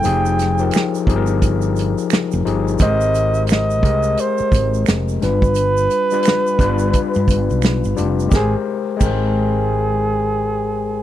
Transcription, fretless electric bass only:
0.05 F1
1.08 G1
2.33 F1
2.46 G1
2.80 G#1
3.83 C2
4.40 muted fretless electric bass stroke
4.52 G#1
4.88 F1
5.23 G1
6.59 G1
7.16 G2
7.28 G1
7.50 B1
7.85 G1
7.98 F1
8.32 G#1
9.01 G#1

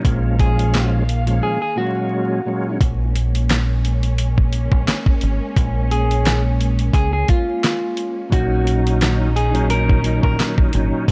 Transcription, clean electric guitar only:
0.40 G#4
1.43 G#4
1.62 G#4
1.78 F#4
5.91 G#4
6.95 G#4
7.13 G#4
7.29 F4
8.33 F#4
9.36 G#4
9.70 A#4
10.24 A#4

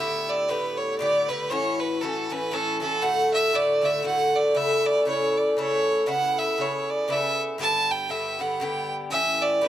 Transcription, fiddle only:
Already playing: E5
0.29 D5
0.49 B4
0.77 C#5
0.98 D5
1.29 B4
1.49 C#5
1.79 B4
2.01 A4
2.31 B4
2.53 A4
2.81 A4
3.02 F#5
3.34 E5
3.55 D5
3.84 E5
4.06 F#5
4.35 D5
4.57 E5
4.86 D5
5.07 C#5
5.37 D5
5.60 C#5
6.09 F#5
6.38 E5
6.61 C#5
6.90 D5
7.12 E5
7.61 A5
7.91 G5
8.11 E5
8.41 F#5
8.63 G5
9.11 E5
9.42 D5
9.65 B4

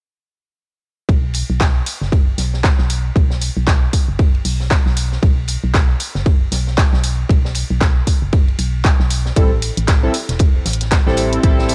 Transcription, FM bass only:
1.09 B1
1.50 B1
2.02 F#1
2.38 B1
2.79 B1
3.16 B1
3.57 B1
4.08 F#1
4.45 B1
4.86 B1
5.23 B1
5.64 B1
6.15 F#1
6.52 B1
6.93 B1
7.29 B1
7.71 B1
8.22 F#1
8.59 B1
9.00 B1
9.36 A1
9.77 A1
10.29 E1
10.66 A1
11.07 A1
11.43 A1

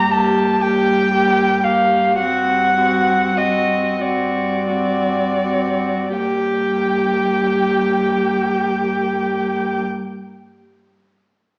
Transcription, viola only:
Already playing: A#3
0.14 A#3
0.64 A#3
1.14 A#3
1.66 A#3
2.21 C4
2.78 C4
3.39 C4
4.02 C4
4.72 C4
5.47 C4
6.20 A#3

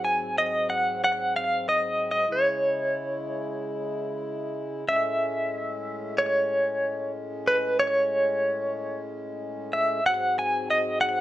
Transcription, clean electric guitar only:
0.05 G#5
0.38 D#5
0.70 F#5
1.04 F#5
1.36 F5
1.69 D#5
2.11 D#5
2.33 C#5
4.89 E5
6.18 C#5
7.47 B4
7.80 C#5
9.73 E5
10.06 F#5
10.39 G#5
10.70 D#5
11.01 F#5

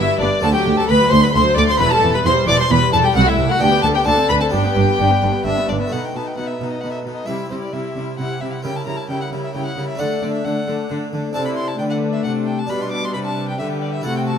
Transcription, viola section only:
0.21 B3
0.43 A3
0.54 F#3
0.66 A3
0.78 F#3
0.90 A3
1.00 F#3
1.11 A3
1.22 F#3
1.34 A3
1.45 F#3
1.56 A3
1.67 F#3
1.78 E3
1.91 G3
2.01 E3
2.13 G3
2.25 E3
2.36 G3
2.47 E3
2.58 G3
2.69 E3
2.80 G3
2.92 E3
3.03 G3
3.16 G3
3.27 A3
3.38 G3
3.49 A3
3.61 D4
3.72 B3
3.83 D4
3.96 B3
4.06 D4
4.18 C4
4.30 D4
4.41 C4
4.54 D4
4.65 B3
4.76 D4
4.88 B3
5.00 D4
5.11 B3
5.23 D4
5.34 B3
5.46 D4
5.58 B3
5.69 D4
5.81 B3
5.93 B3
6.15 B3
6.38 B3
6.61 B3
6.83 B3
7.05 B3
7.27 G3
7.50 G3
7.73 G3
7.96 G3
8.19 G3
8.42 G3
8.64 G3
8.87 G3
9.09 G3
9.32 G3
9.55 G3
9.77 G3
10.00 A3
10.23 A3
10.45 A3
10.67 A3
10.90 A3
11.13 A3
11.35 C4
11.80 A3
12.70 G3
13.60 G3
14.05 A3

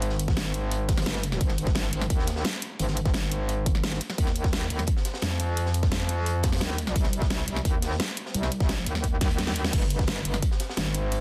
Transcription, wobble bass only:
Already playing: G#1
1.06 G1
1.41 G#1
1.93 G#1
2.10 D#2
2.80 G#1
3.14 G#1
4.18 D#2
4.70 D#2
5.22 F2
6.61 D#2
6.96 C2
7.48 C2
7.65 D#2
8.34 C2
8.86 D#2
9.73 G1
10.25 G1
10.77 G#1

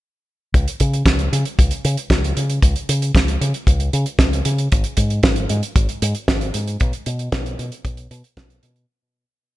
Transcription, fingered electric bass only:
0.54 C#2
0.80 C#3
1.06 C#2
1.32 C#3
1.59 C#2
1.85 C#3
2.10 C#2
2.37 C#3
2.62 C#2
2.89 C#3
3.15 C#2
3.41 C#3
3.67 C#2
3.93 C#3
4.19 C#2
4.45 C#3
4.72 G#1
4.97 G#2
5.24 G#1
5.50 G#2
5.76 G#1
6.02 G#2
6.28 G#1
6.54 G#2
6.81 B1
7.06 B2
7.32 B1
7.59 B2
7.85 B1
8.11 B2
8.37 B1
8.63 B2

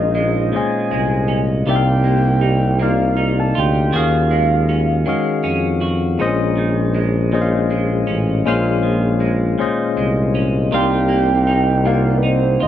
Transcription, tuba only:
Already playing: A#1
0.55 C2
0.92 C2
1.68 C2
3.57 D2
3.94 D#2
5.07 F2
5.45 F2
6.21 A#1
8.09 A1
8.47 A#1
9.60 C2
9.97 C2
10.73 C2
12.62 D2

